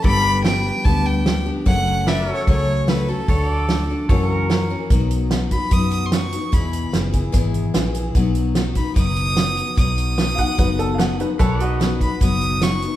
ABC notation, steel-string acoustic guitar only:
X:1
M:4/4
L:1/8
Q:1/4=148
K:F#phr
V:1 name="Steel-string acoustic guitar"
[G,,D,G,B,DG]2 [G,B,DG]2 [G,,D,G,B,DG]2 [G,B,DG] [G,B,DG] | [F,,C,F,A,CF]2 [F,A,CF] [F,A,CF] [F,,C,F,A,CF]2 [F,A,CF] [F,A,CF] | [D,A,DF]2 [D,A,DF] [A,DF] [F,,C,E,^A,CF]2 [E,A,CF] [E,A,CF] | [K:B] [B,,F,B,DF]2 [F,B,DF] [B,DF] [B,,F,B,DF]2 [F,B,DF] [B,DF] |
[E,,B,,E,B,EG]2 [E,B,EG] [E,B,EG] [E,,B,,E,B,EG]2 [E,B,EG] [E,B,EG] | [B,,F,B,DF]2 [F,B,DF] [B,DF] [B,,F,B,DF]2 [F,B,DF]2 | [B,,F,B,DF]2 [F,B,DF] [B,DF] [B,,F,B,DF]2 [F,B,DF] [B,DF] | [B,,F,B,DF]2 [F,B,DF] [B,DF] [B,,F,B,DF]2 [F,B,DF] [B,DF] |]